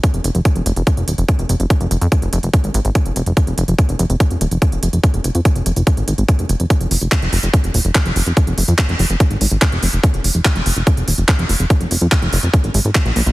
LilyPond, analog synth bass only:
\new Staff \with { instrumentName = "Analog synth bass" } { \clef bass \time 4/4 \key f \minor \tempo 4 = 144 r16 f,,16 f,,16 f,,16 r16 f,,16 f,,16 f,,16 r16 f,,16 ees,,16 f,,16 r16 f,,16 f,,16 f,,16 | r16 f,,16 f,,16 f,16 r16 f,,16 f,,16 f,,16 r16 aes,,16 aes,,16 aes,,16 r16 f,,16 f,,16 f,,16 | r16 f,,16 f,,16 f,,16 r16 f,,16 f,,16 f,,16 r16 f,,16 ees,,16 f,,16 r16 f,,16 f,,16 f,,16 | r16 f,,16 f,,16 f,16 r16 f,,16 f,,16 f,,16 r16 aes,,16 aes,,16 aes,,16 r16 f,,16 f,,16 f,,16 |
r16 f,,16 f,,16 f,,16 r16 f,,16 f,,16 f,,16 r16 f,,16 ees,,16 f,,16 r16 f,,16 f,,16 f,,16 | r16 f,,16 f,,16 f,16 r16 f,,16 f,,16 f,,16 r16 aes,,16 aes,,16 aes,,16 r16 f,,16 f,,16 f,,16 | r16 f,,16 f,,16 f,,16 r16 f,,16 f,,16 f,,16 r16 f,,16 ees,,16 f,,16 r16 f,,16 f,,16 f,,16 | r16 f,,16 f,,16 f,16 r16 f,,16 f,,16 f,,16 r16 aes,,16 aes,,16 aes,,16 r16 bes,,16 bes,,16 bes,,16 | }